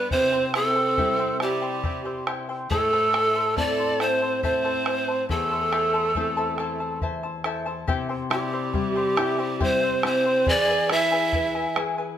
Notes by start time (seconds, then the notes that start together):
Already playing: B4 D5 B5
0.11 C3 C4 E4 C5 E5 G5, bombo low
0.33 E4 C5 G5
0.54 C4 E4 G4 A4 C5 E5 G5, bombo rim
0.76 E4 C5 G5
0.97 G3 C4 E4 G4 C5 E5 G5, bombo rim, bombo low
1.19 E4 G4 C5 E5 G5
1.40 G3 E4 G4 C5 E5 G5, bombo rim
1.62 E4 C5 G5
1.83 E4 C5 E5 G5, bombo low
2.05 E4 C5 G5, bombo rim
2.27 E4 G4 C5 E5 G5, bombo rim
2.49 E4 C5 G5
2.70 A2 A3 E4 A4 C5 E5 A5, bombo low
2.93 E4 A4 C5 E5 A5
3.13 E4 C5 E5 A5, bombo rim
3.35 E4 C5 A5
3.56 A3 C4 E4 A4 C5 D5 E5 A5, bombo rim, bombo low
3.78 E4 C5 A5
4.00 C4 E4 A4 C5 E5 A5, bombo rim
4.21 E4 C5 A5
4.43 C4 E4 A4 C5 E5 A5, bombo low
4.64 E4 A4 C5 E5 A5, bombo rim
4.86 E4 C5 E5 A5, bombo rim
5.08 E4 C5 A5
5.29 E2 A3 E4 A4 C5 E5 A5, bombo low
5.51 E4 C5 A5
5.72 E4 A4 C5 E5 A5, bombo rim
5.94 E4 C5 A5, bombo rim
6.15 A3 C4 E4 A4 C5 E5 A5, bombo rim, bombo low
6.37 E4 A4 C5 E5 A5
6.58 E4 C5 E5 A5, bombo rim
6.80 E4 C5 A5
7.01 E4 C5 E5 A5, bombo low
7.23 E4 C5 A5, bombo rim
7.44 E4 A4 C5 E5 A5, bombo rim
7.66 E4 C5 A5, bombo rim
7.87 C3 E4 G4 C5 E5 G5, bombo low
8.09 E4 C5 G5, bombo rim
8.30 G3 E4 G4 C5 E5 G5, bombo rim
8.53 E4 C5 G5
8.73 G3 E4 C5 E5 G5, bombo low
8.95 E4 C5 G5, bombo rim
9.17 E4 G4 C5 E5 G5, bombo rim
9.39 E4 C5 G5
9.60 G3 C4 E4 G4 C5 E5 G5, bombo low
9.82 E4 C5 G5
10.03 C4 E4 G4 C5 E5 G5, bombo rim
10.25 E4 C5 G5
10.46 E3 E4 G#4 B4 D5 E5 G#5, bombo low
10.68 E4 B4 G#5, bombo rim
10.90 E4 G#4 B4 E5 G#5, bombo rim
11.12 E4 B4 G#5
11.33 E4 G#4 B4 E5 G#5, bombo low
11.55 E4 B4 G#5, bombo rim
11.76 E4 G#4 B4 E5 G#5, bombo rim
11.98 E4 B4 G#5